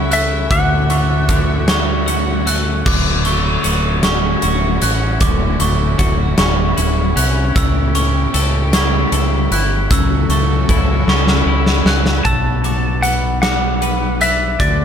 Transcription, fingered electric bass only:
Already playing: C#2
0.51 D2
2.86 D1
3.65 D1
4.43 D1
4.82 A1
5.21 D1
5.60 D1
5.99 D1
6.38 D1
6.78 D1
7.17 C2
7.56 C#2
8.34 C#2
9.12 C#2
9.51 G1
9.91 C#2
10.29 C#2
10.69 C#2
11.07 C#2
11.46 C#2
11.85 C#2
12.25 B1
14.60 D2

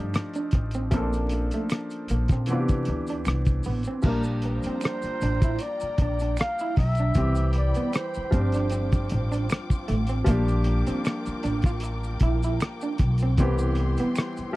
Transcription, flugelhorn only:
4.06 A#4
4.45 C5
5.61 D5
6.02 D5
6.40 F5
6.78 E5
7.58 D5
7.95 C5

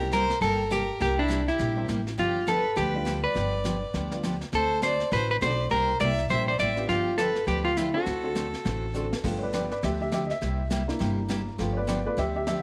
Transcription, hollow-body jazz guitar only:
Already playing: G4
0.13 A#4
0.42 A4
0.72 G4
1.02 G4
1.19 D4
1.48 E4
2.19 F4
2.48 A4
2.77 G4
3.24 B4
4.55 A4
4.83 C5
5.13 B4
5.31 B4
5.42 C5
5.71 A#4
6.01 D5
6.30 C5
6.48 C5
6.60 D5
6.89 F4
7.18 A4
7.48 G4
7.65 F4
7.77 E4
7.94 F#4

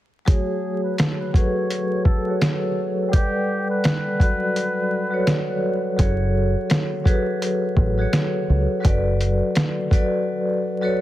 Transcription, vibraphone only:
0.25 F#3 A3 F#4 G#4 C#5
1.33 F#3 F#4 G#4 A4 B4
2.27 F#3 F#4 G#4 A4 C#5
3.09 G3 A4 B4 D5 F#5
4.19 F#3 F#4 A4 B4 D5
5.10 F#3 F#4 A4 B4 C#5
5.97 F#3 F#4 G#4 A4 C#5
7.04 F#3 F#4 G#4 A4 B4
7.98 F#3 F#4 G#4 A4 C#5
8.80 F#3 F#4 A4 B4 D5
9.90 F#3 F#4 A4 B4 D5
10.81 F#3 F#4 A4 B4 C#5

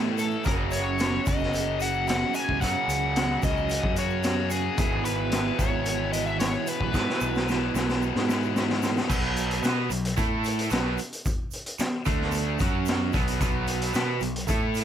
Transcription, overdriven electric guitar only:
Already playing: A2 E3 A3
0.44 F#2 C#3 F#3
2.60 F#2 C#3 F#3
4.77 E2 B2 E3
6.93 E2 B2 E3
9.09 B2 F#3 B3
9.63 B3 F#4 B4
9.91 B2 F#3
10.17 A3 E4 A4
10.71 B2 F#3 B3
11.80 muted overdriven electric guitar stroke
12.06 D3 A3 D4
12.60 F#3 C#4 F#4
13.13 B2 F#3 B3
13.40 B2 F#3 B3
13.94 B3 F#4 B4
14.21 B2 F#3
14.47 A3 E4 A4

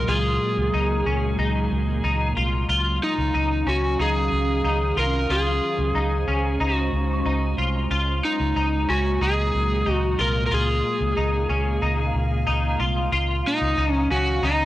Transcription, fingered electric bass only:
0.08 C#2
0.57 C#2
0.74 C#2
1.06 C#2
1.39 C#2
1.71 C#2
2.04 C#2
2.37 C2
2.69 C#2
3.18 C#2
3.34 C#2
3.67 C#2
4.00 C#2
4.32 C#2
4.64 C#2
4.97 C2
5.30 C#2
5.78 C#2
5.95 C#2
6.28 C#2
6.60 C#2
6.93 C#2
7.26 C#2
7.58 C2
7.91 C#2
8.40 C#2
8.56 C#2
8.89 C#2
9.21 C#2
9.54 C#2
9.87 C#2
10.19 C2
10.52 C#2
11.01 C#2
11.17 C#2
11.49 C#2
11.82 C#2
12.15 C#2
12.47 C#2
12.80 C2
13.12 C#2
13.61 C#2
13.78 C#2
14.10 C#2
14.43 C#2

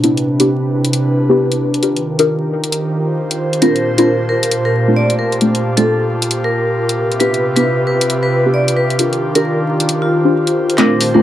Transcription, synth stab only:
0.04 B3 D4 E4 G4
0.40 B3 D4 E4 G4
1.29 B3 D4 E4 G4
1.83 D4 F4 G4 A#4
2.19 D4 F4 G4 A#4
3.62 A3 C4 D4 F4
3.98 A3 C4 D4 F4
4.88 A3 C4 D4 F4
5.41 A3 C4 D4 F4
5.77 A3 C4 D4 F4
7.20 B3 D4 E4 G4
7.56 B3 D4 E4 G4
8.46 B3 D4 E4 G4
8.99 D4 F4 G4 A#4
9.35 D4 F4 G4 A#4
10.25 D4 F4 G4 C5
10.78 A3 C4 D4 F4
11.14 A3 C4 D4 F4

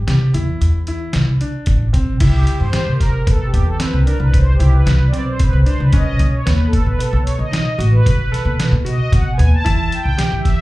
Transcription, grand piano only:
0.07 G4
0.34 E4
0.88 E4
1.41 D4
1.93 C4
2.21 E4
2.73 G4
3.27 B3
3.80 C4
4.06 D4
4.60 E4
5.13 C4
5.66 D4
5.93 C#4
6.46 B3
6.99 B3
7.51 D#4
7.78 F#4
8.32 A4
8.85 F#4
9.38 B3
9.64 E4
10.18 G4

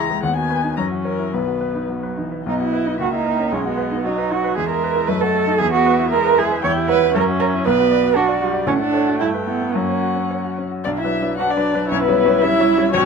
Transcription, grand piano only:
Already playing: C#2 E4 G#4
0.11 G#3
0.23 D#2
0.36 F#4
0.50 B4
0.64 D#4
0.77 F#2
0.91 F#4
1.05 C#5
1.19 E4
1.34 B1
1.47 F#4
1.61 B4
1.75 D#4
1.89 F#4
2.03 B4
2.17 D#4
2.32 B4
2.46 B1
2.60 F#4
2.73 B4
2.86 D#4
2.99 C#2
3.13 E4
3.26 A#4
3.39 C#4
3.52 B1
3.65 F#4
3.77 B4
3.91 D#4
4.04 F#4
4.18 B4
4.30 D#4
4.44 B4
4.57 E2
4.71 G#4
4.84 B4
4.96 E4
5.08 F#2
5.22 F#4
5.35 A4
5.47 D#4
5.61 E2
5.73 G#4
5.86 B4
5.99 E4
6.12 G#4
6.25 B4
6.39 E4
6.51 B4
6.64 E2
6.76 G4
6.89 C#5
7.03 E4
7.15 F#2
7.28 F#4
7.40 C#5
7.54 E4
7.67 B1
7.79 F#4
7.91 D5
8.04 F#4
8.16 D4
8.29 D5
8.42 F#4
8.54 D5
8.67 A2
8.80 A4
8.94 C#5
9.07 F#4
9.20 G2
9.34 B4
9.48 E4
9.62 B3
9.75 F#2
9.89 C#5
10.02 F#4
10.16 C#4
10.31 C#5
10.44 F#4
10.58 C#4
10.71 F#4
10.86 B1
11.04 F#3 D4 B4
11.22 F#3 D4 B4
11.39 F#3 D4 B4
11.57 F#3 D4 B4
11.74 F#3 D4 B4
11.91 B1
12.08 G3 C#4 C#5
12.25 G3 C#4 C#5
12.43 G3 C#4 C#5
12.60 G3 C#4 C#5
12.78 G3 C#4 C#5
12.94 A#1

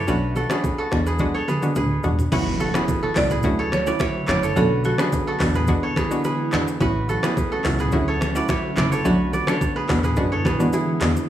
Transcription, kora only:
Already playing: A4 C#5 E5
0.08 F#4 B4
0.36 F#4 A4
0.50 G#4 B4
0.78 F#4 A4
1.06 G#4 B4
1.34 A4 C#5
1.48 G#4 B4
1.76 G#4 B4
2.32 F#4 B4
2.60 F#4 A4
2.75 G#4 B4
3.03 F#4 A4
3.31 G#4 B4
3.59 A4 C#5
3.87 B4 D5
4.00 C#5 E5
4.28 B4 D5
4.43 A4 C#5
4.57 F#4 B4
4.85 F#4 A4
4.99 G#4 B4
5.27 F#4 A4
5.55 G#4 B4
5.83 A4 C#5
5.97 G#4 B4
6.25 G#4 B4
6.81 F#4 B4
7.09 F#4 A4
7.23 G#4 B4
7.52 F#4 A4
7.80 G#4 B4
8.08 A4 C#5
8.36 B4 D5
8.49 C#5 E5
8.77 B4 D5
8.92 A4 C#5
9.05 F#4 B4
9.33 B4 D5
9.48 A4 C#5
9.76 G#4 B4
10.04 G#4 B4
10.32 A4 C#5
10.45 G#4 B4
10.73 E4 G#4

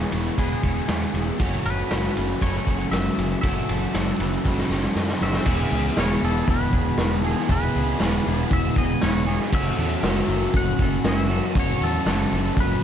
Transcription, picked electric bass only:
0.13 E1
0.38 E1
0.64 E1
0.89 E2
1.14 E1
1.40 F#1
1.65 F#1
1.92 F#1
2.17 F#1
2.42 F#1
2.67 F#1
2.91 F#1
3.18 F#1
3.44 F#1
3.69 F#1
3.94 F#1
4.20 F#1
4.45 F#1
4.70 F#1
4.96 F#2
5.21 F#1
5.46 E1
5.72 C#2
5.97 E1
6.22 E1
6.48 E1
6.73 E1
6.98 E1
7.49 E1
7.76 C#2
8.01 E1
8.27 E1
8.51 E1
8.76 E1
9.03 E1
9.53 F#1
9.78 E2
10.03 F#1
10.28 F#1
10.54 F#1
10.79 F#1
11.04 F#1
11.56 F#1
11.81 E2
12.06 F#1
12.32 F#1
12.57 F#1

